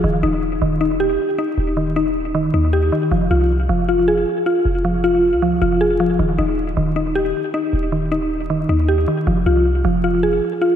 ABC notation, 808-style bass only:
X:1
M:4/4
L:1/16
Q:1/4=156
K:Fm
V:1 name="808-style bass" clef=bass
E,,,2 E,,,4 E,,,6 z4 | E,,,8- E,,,2 E,,4 z2 | F,,,2 C,,4 F,,,6 z4 | F,,,6- F,,, C,,3 F,,,6 |
E,,,2 E,,,4 E,,,6 z4 | E,,,8- E,,,2 E,,4 z2 | F,,,2 C,,4 F,,,6 z4 |]